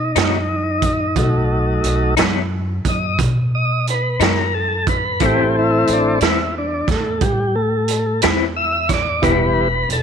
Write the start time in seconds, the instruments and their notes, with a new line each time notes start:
Already playing: upright bass B2, tonewheel organ D#4
0.15 upright bass F#2, clean electric guitar B2 F#3 A3 D#4, snare, closed hi-hat
0.82 kick, closed hi-hat
1.16 upright bass B1, tonewheel organ F#3 A3 D#4, kick, closed hi-hat
1.83 upright bass B1, closed hi-hat
2.17 upright bass F#2, clean electric guitar B2 F#3 A3 D#4, snare, closed hi-hat
2.85 upright bass F#2, tonewheel organ D#5, kick, closed hi-hat
3.19 upright bass B2, kick, closed hi-hat
3.55 tonewheel organ D#5
3.87 tonewheel organ B4, closed hi-hat
4.19 upright bass F#2, clean electric guitar B2 F#3 A3 D#4, tonewheel organ A#4, snare, closed hi-hat
4.54 tonewheel organ A4
4.87 tonewheel organ B4, kick, closed hi-hat
5.20 upright bass A1, clean electric guitar A2 E3 C4 E4, tonewheel organ E3 A3, kick, closed hi-hat
5.24 tonewheel organ C4 G4
5.59 tonewheel organ E4
5.87 upright bass A1, closed hi-hat
5.93 tonewheel organ D4
6.21 upright bass E2, clean electric guitar A2 E3 C4 E4, tonewheel organ E4, snare, closed hi-hat
6.58 tonewheel organ D4
6.87 upright bass E2, tonewheel organ A3, kick, snare, closed hi-hat
7.21 upright bass A2, tonewheel organ G3, kick, closed hi-hat
7.56 tonewheel organ A3
7.88 closed hi-hat
8.22 upright bass E2, clean electric guitar A2 E3 C4 E4, snare, closed hi-hat
8.56 tonewheel organ E5
8.89 tonewheel organ C#5, kick, snare, closed hi-hat
8.94 tonewheel organ D5
9.22 upright bass E1, tonewheel organ E3 G3 B3 B4, clean electric guitar E3 G3 B3 E4, kick, closed hi-hat
9.89 upright bass E1, tonewheel organ A4, closed hi-hat